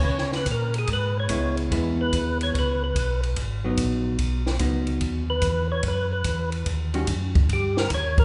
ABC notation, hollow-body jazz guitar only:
X:1
M:4/4
L:1/8
Q:"Swing" 1/4=145
K:G#m
V:1 name="Hollow-body jazz guitar"
z6 [G,B,E]2 | [G,B,E]4- [G,B,E] z3 | z [F,B,D]3 z2 [F,B,D]2- | [F,B,D] z6 z |
z [D,=G,CF] z6 |]